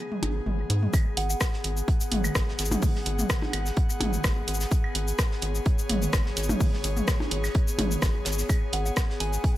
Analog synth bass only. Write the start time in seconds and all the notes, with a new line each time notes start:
0.23 G#1
0.46 G#1
0.70 G#2
1.17 G#1
1.64 G#1
2.12 G#1
2.35 G#1
2.59 G#1
3.06 G#1
3.53 G#1
4.01 G#1
4.24 G#1
4.48 G#1
4.95 G#1
5.42 G#1
5.90 G#1
6.13 G#1
6.37 G#1
6.84 G#1
7.31 G#1
7.79 G#1
8.02 G#1
8.26 G#1
8.73 G#1
9.20 G#1